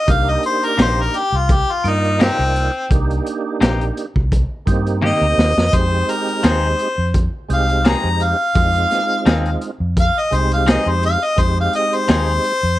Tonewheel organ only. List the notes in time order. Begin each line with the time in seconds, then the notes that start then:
0.07 A#3 D4 D#4 G4
1.84 A#3 D#4 F4 D5
2.90 A#3 D4 D#4 G4
4.66 A#3 C4 D#4 G4
5.72 G#3 C4 D#4 G4
7.49 G#3 C4 D#4 G4
8.54 G#3 C4 D#4 F4
10.31 G#3 C4 D#4 G4
11.36 G#3 C4 D#4 G4